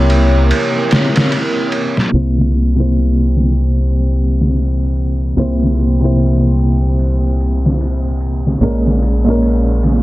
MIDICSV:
0, 0, Header, 1, 5, 480
1, 0, Start_track
1, 0, Tempo, 810811
1, 1259, Time_signature, 4, 2, 24, 8
1, 5937, End_track
2, 0, Start_track
2, 0, Title_t, "Analog synth pad"
2, 0, Program_c, 0, 89
2, 0, Note_on_c, 0, 64, 70
2, 0, Note_on_c, 0, 70, 69
2, 0, Note_on_c, 0, 73, 84
2, 1235, Note_off_c, 0, 70, 0
2, 1237, Note_off_c, 0, 73, 0
2, 1238, Note_off_c, 0, 64, 0
2, 1250, Note_on_c, 0, 67, 68
2, 1251, Note_on_c, 0, 58, 67
2, 1251, Note_on_c, 0, 64, 66
2, 1252, Note_on_c, 0, 72, 81
2, 3156, Note_off_c, 0, 72, 0
2, 3172, Note_on_c, 0, 70, 74
2, 5071, Note_off_c, 0, 58, 0
2, 5071, Note_off_c, 0, 64, 0
2, 5071, Note_off_c, 0, 67, 0
2, 5097, Note_on_c, 0, 61, 67
2, 5099, Note_on_c, 0, 56, 72
2, 5103, Note_on_c, 0, 65, 63
2, 5937, Note_off_c, 0, 56, 0
2, 5937, Note_off_c, 0, 61, 0
2, 5937, Note_off_c, 0, 65, 0
2, 5937, Note_off_c, 0, 70, 0
2, 5937, End_track
3, 0, Start_track
3, 0, Title_t, "Upright piano"
3, 0, Program_c, 1, 0
3, 0, Control_c, 1, 64, 127
3, 0, Note_on_c, 1, 48, 82
3, 0, Note_on_c, 1, 58, 76
3, 0, Note_on_c, 1, 64, 72
3, 0, Note_on_c, 1, 73, 85
3, 1231, Note_off_c, 1, 48, 0
3, 1236, Note_off_c, 1, 58, 0
3, 1241, Note_off_c, 1, 64, 0
3, 1246, Note_off_c, 1, 73, 0
3, 1255, Note_on_c, 1, 48, 64
3, 1263, Note_on_c, 1, 58, 58
3, 1265, Note_on_c, 1, 64, 62
3, 1267, Control_c, 1, 64, 0
3, 1271, Note_on_c, 1, 72, 72
3, 1374, Control_c, 1, 64, 127
3, 1605, Note_off_c, 1, 48, 0
3, 1609, Note_off_c, 1, 58, 0
3, 1610, Note_off_c, 1, 64, 0
3, 1613, Note_off_c, 1, 72, 0
3, 1630, Note_on_c, 1, 48, 75
3, 1639, Note_on_c, 1, 58, 68
3, 1649, Note_on_c, 1, 64, 68
3, 1658, Note_on_c, 1, 72, 83
3, 3150, Note_off_c, 1, 48, 0
3, 3155, Note_off_c, 1, 58, 0
3, 3159, Note_off_c, 1, 64, 0
3, 3164, Note_off_c, 1, 72, 0
3, 3178, Note_on_c, 1, 48, 76
3, 3183, Note_on_c, 1, 58, 69
3, 3191, Note_on_c, 1, 64, 69
3, 3193, Note_on_c, 1, 72, 84
3, 3526, Note_off_c, 1, 48, 0
3, 3529, Note_off_c, 1, 58, 0
3, 3533, Note_off_c, 1, 64, 0
3, 3534, Note_off_c, 1, 72, 0
3, 3553, Note_on_c, 1, 48, 70
3, 3564, Note_on_c, 1, 58, 63
3, 3572, Note_on_c, 1, 64, 59
3, 3581, Note_on_c, 1, 72, 70
3, 5072, Note_off_c, 1, 48, 0
3, 5077, Note_off_c, 1, 58, 0
3, 5081, Note_off_c, 1, 64, 0
3, 5086, Note_off_c, 1, 72, 0
3, 5096, Note_on_c, 1, 46, 66
3, 5102, Note_on_c, 1, 56, 63
3, 5106, Control_c, 1, 64, 0
3, 5106, Note_on_c, 1, 61, 57
3, 5112, Note_on_c, 1, 70, 75
3, 5212, Control_c, 1, 64, 127
3, 5446, Note_off_c, 1, 46, 0
3, 5448, Note_off_c, 1, 56, 0
3, 5450, Note_off_c, 1, 61, 0
3, 5453, Note_off_c, 1, 70, 0
3, 5471, Note_on_c, 1, 46, 81
3, 5482, Note_on_c, 1, 56, 71
3, 5494, Note_on_c, 1, 61, 74
3, 5504, Note_on_c, 1, 70, 87
3, 5937, Note_off_c, 1, 46, 0
3, 5937, Note_off_c, 1, 56, 0
3, 5937, Note_off_c, 1, 61, 0
3, 5937, Note_off_c, 1, 70, 0
3, 5937, End_track
4, 0, Start_track
4, 0, Title_t, "Fingered electric bass"
4, 0, Program_c, 2, 33
4, 0, Note_on_c, 2, 36, 96
4, 299, Note_off_c, 2, 36, 0
4, 1260, Note_on_c, 2, 36, 78
4, 3160, Note_off_c, 2, 36, 0
4, 3177, Note_on_c, 2, 36, 75
4, 5078, Note_off_c, 2, 36, 0
4, 5093, Note_on_c, 2, 34, 73
4, 5937, Note_off_c, 2, 34, 0
4, 5937, End_track
5, 0, Start_track
5, 0, Title_t, "Drums"
5, 58, Note_on_c, 9, 51, 65
5, 117, Note_off_c, 9, 51, 0
5, 301, Note_on_c, 9, 51, 94
5, 360, Note_off_c, 9, 51, 0
5, 539, Note_on_c, 9, 51, 74
5, 548, Note_on_c, 9, 38, 101
5, 598, Note_off_c, 9, 51, 0
5, 607, Note_off_c, 9, 38, 0
5, 685, Note_on_c, 9, 51, 79
5, 694, Note_on_c, 9, 38, 100
5, 744, Note_off_c, 9, 51, 0
5, 753, Note_off_c, 9, 38, 0
5, 781, Note_on_c, 9, 51, 79
5, 840, Note_off_c, 9, 51, 0
5, 1018, Note_on_c, 9, 51, 58
5, 1078, Note_off_c, 9, 51, 0
5, 1168, Note_on_c, 9, 38, 38
5, 1227, Note_off_c, 9, 38, 0
5, 1407, Note_on_c, 9, 38, 45
5, 1466, Note_off_c, 9, 38, 0
5, 1498, Note_on_c, 9, 51, 56
5, 1558, Note_off_c, 9, 51, 0
5, 1641, Note_on_c, 9, 51, 39
5, 1700, Note_off_c, 9, 51, 0
5, 1737, Note_on_c, 9, 51, 68
5, 1797, Note_off_c, 9, 51, 0
5, 1983, Note_on_c, 9, 46, 70
5, 1992, Note_on_c, 9, 38, 38
5, 2043, Note_off_c, 9, 46, 0
5, 2052, Note_off_c, 9, 38, 0
5, 2218, Note_on_c, 9, 51, 80
5, 2277, Note_off_c, 9, 51, 0
5, 2462, Note_on_c, 9, 51, 57
5, 2522, Note_off_c, 9, 51, 0
5, 2611, Note_on_c, 9, 38, 40
5, 2670, Note_off_c, 9, 38, 0
5, 2700, Note_on_c, 9, 51, 75
5, 2760, Note_off_c, 9, 51, 0
5, 2940, Note_on_c, 9, 51, 57
5, 2999, Note_off_c, 9, 51, 0
5, 3182, Note_on_c, 9, 51, 72
5, 3242, Note_off_c, 9, 51, 0
5, 3333, Note_on_c, 9, 38, 34
5, 3393, Note_off_c, 9, 38, 0
5, 3420, Note_on_c, 9, 51, 55
5, 3479, Note_off_c, 9, 51, 0
5, 3663, Note_on_c, 9, 51, 75
5, 3722, Note_off_c, 9, 51, 0
5, 3807, Note_on_c, 9, 51, 41
5, 3866, Note_off_c, 9, 51, 0
5, 3900, Note_on_c, 9, 51, 57
5, 3960, Note_off_c, 9, 51, 0
5, 4139, Note_on_c, 9, 51, 78
5, 4198, Note_off_c, 9, 51, 0
5, 4381, Note_on_c, 9, 51, 58
5, 4440, Note_off_c, 9, 51, 0
5, 4533, Note_on_c, 9, 38, 50
5, 4593, Note_off_c, 9, 38, 0
5, 4621, Note_on_c, 9, 51, 80
5, 4680, Note_off_c, 9, 51, 0
5, 4857, Note_on_c, 9, 51, 57
5, 4916, Note_off_c, 9, 51, 0
5, 5011, Note_on_c, 9, 38, 32
5, 5070, Note_off_c, 9, 38, 0
5, 5097, Note_on_c, 9, 51, 73
5, 5156, Note_off_c, 9, 51, 0
5, 5249, Note_on_c, 9, 38, 45
5, 5309, Note_off_c, 9, 38, 0
5, 5342, Note_on_c, 9, 51, 60
5, 5401, Note_off_c, 9, 51, 0
5, 5483, Note_on_c, 9, 51, 40
5, 5542, Note_off_c, 9, 51, 0
5, 5579, Note_on_c, 9, 51, 75
5, 5638, Note_off_c, 9, 51, 0
5, 5819, Note_on_c, 9, 46, 65
5, 5828, Note_on_c, 9, 38, 40
5, 5878, Note_off_c, 9, 46, 0
5, 5887, Note_off_c, 9, 38, 0
5, 5937, End_track
0, 0, End_of_file